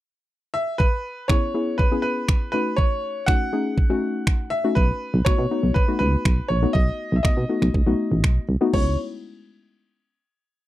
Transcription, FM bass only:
4.77 4.92 B1 loud
5.14 5.22 B1 loud
5.26 5.31 B2 soft
5.38 5.46 B2 loud
5.63 5.71 B1 medium
6.00 6.16 C#2 medium
6.25 6.41 B1 medium
6.50 6.66 A#1 medium
6.75 6.91 B1 loud
7.12 7.20 B1 loud
7.25 7.30 B2 soft
7.37 7.45 B2 medium
7.62 7.70 B1 medium
7.74 7.82 C#2 medium
7.87 7.94 B1 medium
8.12 8.25 A1 medium
8.24 8.39 B1 medium
8.49 8.56 C2 medium
8.74 8.97 C#2 medium

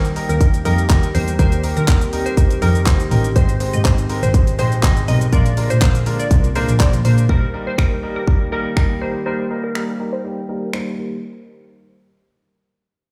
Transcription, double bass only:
0.29 0.45 D#2 medium
0.65 0.82 F2 loud
0.90 1.06 D#2 loud
1.14 1.31 E2 loud
1.39 1.55 D#2 loud
1.77 1.84 D#3 loud
1.88 2.05 D#2 loud
2.62 2.78 F2 medium
2.86 3.03 D#2 medium
3.11 3.28 A1 loud
3.36 3.52 G#1 loud
3.73 3.81 G#2 medium
3.85 4.01 G#2 loud
4.23 4.39 G#1 medium
4.59 4.75 A#1 medium
4.83 5.00 G#1 loud
5.08 5.24 B1 loud
5.33 5.49 A#1 loud
5.70 5.78 A#2 loud
5.82 5.98 A#1 medium
6.31 6.47 C2 loud
6.56 6.65 A#1 soft
6.68 6.76 A#1 medium
6.80 6.90 A#1 soft
6.93 7.01 A#1 loud
7.05 7.21 A#2 loud

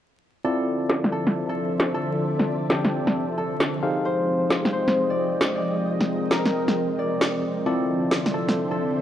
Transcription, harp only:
0.44 1.12 A4 medium
1.12 1.49 A4 medium
1.49 1.94 A4 medium
1.94 3.37 A4 medium
2.70 5.05 G4 medium
3.38 5.57 A4 medium
4.05 4.72 C5 medium
4.73 6.71 C5 medium
5.10 5.55 D5 medium
5.55 6.98 D5 medium
6.31 7.72 A#4 medium
6.99 8.83 D5 medium
7.66 8.33 A4 medium
8.34 8.71 A4 medium
8.71 9.02 A4 medium

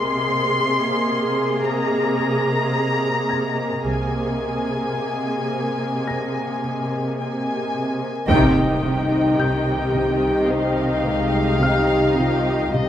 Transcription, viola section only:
0.00 3.80 A#3 medium
0.00 3.83 G#4 medium
3.85 8.05 A#3 soft
3.85 8.05 G#4 soft
8.29 12.69 D#3 medium
8.29 12.69 D#4 medium
12.73 12.89 D#3 medium
12.73 12.89 D#4 medium

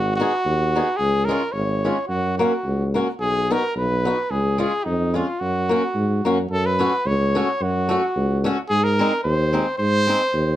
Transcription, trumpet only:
0.00 0.15 F#4 medium
0.16 0.98 F#4 medium
0.96 1.26 G#4 medium
1.25 1.54 A#4 medium
1.52 2.07 C#5 medium
2.08 2.37 F#4 medium
2.38 2.90 F#4 medium
3.21 3.53 G#4 loud
3.52 3.77 A#4 medium
3.77 4.32 B4 medium
4.31 4.60 G#4 medium
4.60 4.86 G#4 medium
4.84 5.16 D#4 medium
5.15 5.42 F4 medium
5.40 6.26 F#4 medium
6.51 6.67 A4 medium
6.66 7.08 B4 loud
7.07 7.64 C#5 medium
7.63 8.46 F#4 medium
8.69 8.85 G#4 loud
8.84 9.23 A#4 loud
9.24 9.75 C5 medium
9.78 10.56 C5 loud

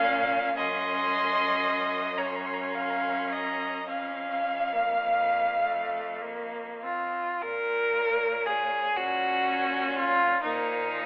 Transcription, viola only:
0.00 0.53 C#4 medium
0.56 2.14 C#4 medium
2.17 3.84 C#4 medium
3.88 4.75 C#4 medium
4.73 5.59 A#3 medium
5.59 6.23 A3 medium
6.22 6.85 A#3 medium
6.84 7.42 C4 medium
8.97 10.41 C#4 medium
10.45 10.92 A#3 medium
10.93 11.06 F3 medium

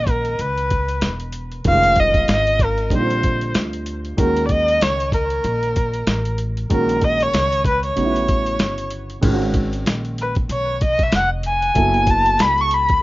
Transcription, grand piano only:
0.00 1.61 D#3 medium
0.00 1.61 G#3 medium
0.00 1.62 C#4 medium
0.00 1.62 F#4 medium
1.65 2.89 D#3 medium
1.65 1.73 G3 soft
1.65 2.90 C#4 medium
1.65 2.90 F4 medium
1.72 2.92 G#3 medium
2.90 4.15 D3 medium
2.90 4.15 G3 medium
2.90 4.15 C4 medium
2.90 3.00 D#4 medium
2.99 4.19 F4 medium
4.17 6.66 D#3 medium
4.17 6.66 G#3 medium
4.17 6.67 C#4 medium
4.17 6.67 F#4 medium
6.70 7.94 D#3 medium
6.70 7.94 G#3 medium
6.70 7.95 C#4 medium
6.70 7.95 F#4 medium
7.96 9.20 C#3 medium
7.96 9.20 F#3 medium
7.96 9.21 B3 medium
7.96 8.05 D#4 soft
8.05 9.25 E4 medium
9.21 11.71 D#3 medium
9.21 11.71 G#3 medium
9.21 11.72 C#4 medium
9.21 9.31 F4 medium
9.30 11.75 F#4 medium
11.75 12.99 F#3 medium
11.75 12.99 B3 medium
11.75 13.00 E4 medium
11.75 13.00 A4 medium

